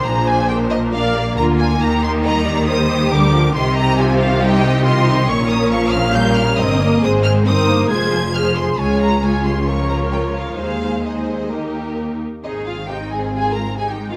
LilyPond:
<<
  \new Staff \with { instrumentName = "Violin section" } { \time 4/4 \key c \minor \tempo 4 = 137 bes''8 aes''8 g''8 ees''8 f''4 bes''8 aes''8 | bes''8 c'''8 bes''4 ees'''4 d'''4 | c'''8 bes''8 aes''8 f''8 g''4 c'''4 | \key aes \major des'''8 ees'''8 des'''8 f'''8 g'''8 f'''8 ees'''4 |
ees'''8 f'''8 ees'''4 aes'''4 f'''8 c'''8 | aes''8 bes''8 aes''8 c'''8 des'''8 bes''8 g''8 f''8 | f''4 ees''2 r4 | ees''8 f''8 g''8 aes''8 aes''8 bes''8 aes''16 g''8 f''16 | }
  \new Staff \with { instrumentName = "Violin section" } { \time 4/4 \key c \minor << { c''2 d''4 bes'4 | bes'4 ees''8 d''8 c''4 bes'4 | ees''4 c''4 ees''4 ees''4 | \key aes \major des''4 f''2 ees''4 |
c''4 c''4 c''4 c''4 | des''4 des''4 des''2 | c''4 c''4 bes'4. r8 | ees'8 f'8 g'8 aes'8 aes'8 bes'8 aes'16 g'8 f'16 | } \\ { aes'4 bes'4 bes'4 f'4 | g'4 bes'4 bes'8 g'4. | g'4 f'4 g'4 g'4 | bes'2 bes'4 bes'4 |
aes'4 bes'4 aes'4 aes'4 | aes'4 aes'4 bes'2 | aes'4 aes'4 g'4. r8 | r1 | } >> }
  \new Staff \with { instrumentName = "Viola section" } { \clef bass \time 4/4 \key c \minor << { d'2 d'8 g'8 f'4 | ees'2 g'2 | g'2 ees'4 f'8 ees'8 | \key aes \major des'1 |
c'4 ees'4 f'4 aes'4 | f'4 f'4 f'2 | ees'4 ees'4 ees'4. r8 | c'1 | } \\ { f2 bes2~ | bes4 g4 g4 g8 f8 | ees2 g8 ees4. | ees4 f4 g4 c'8 bes8 |
aes4 c'8 bes8 aes8 f8 f4 | aes4 aes8 g8 f2 | aes4 aes4 bes4. r8 | c16 ees16 aes16 ees16 c16 ees16 aes16 ees16 c16 ees16 aes16 ees16 c16 ees16 aes16 ees16 | } >> }
  \new Staff \with { instrumentName = "Cello section" } { \clef bass \time 4/4 \key c \minor bes,2. d4 | ees2. d4 | c1 | \key aes \major bes,2. g,4 |
aes,4 g,4 f,2 | des,1 | ees,2.~ ees,8 r8 | aes'4 ees'4 f'4 ees'4 | }
  \new Staff \with { instrumentName = "Double bass section" } { \clef bass \time 4/4 \key c \minor bes,,2. d,4 | ees,2. d,4 | c,1 | \key aes \major bes,,2. g,,4 |
aes,,4 g,,4 f,,2 | des,1 | ees,2.~ ees,8 r8 | aes,,1 | }
>>